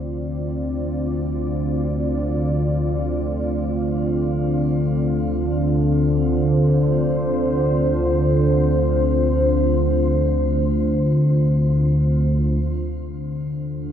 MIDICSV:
0, 0, Header, 1, 3, 480
1, 0, Start_track
1, 0, Key_signature, -1, "minor"
1, 0, Tempo, 500000
1, 13365, End_track
2, 0, Start_track
2, 0, Title_t, "Analog synth pad"
2, 0, Program_c, 0, 89
2, 0, Note_on_c, 0, 60, 65
2, 0, Note_on_c, 0, 65, 62
2, 0, Note_on_c, 0, 74, 59
2, 5686, Note_on_c, 0, 72, 67
2, 6028, Note_off_c, 0, 74, 0
2, 12095, Note_off_c, 0, 65, 0
2, 12098, Note_off_c, 0, 72, 0
2, 12101, Note_off_c, 0, 60, 0
2, 13365, End_track
3, 0, Start_track
3, 0, Title_t, "Synth drone"
3, 0, Program_c, 1, 95
3, 0, Note_on_c, 1, 38, 72
3, 0, Note_on_c, 1, 50, 63
3, 12084, Note_off_c, 1, 38, 0
3, 12090, Note_off_c, 1, 50, 0
3, 12095, Note_on_c, 1, 38, 68
3, 12101, Note_on_c, 1, 50, 68
3, 13365, Note_off_c, 1, 38, 0
3, 13365, Note_off_c, 1, 50, 0
3, 13365, End_track
0, 0, End_of_file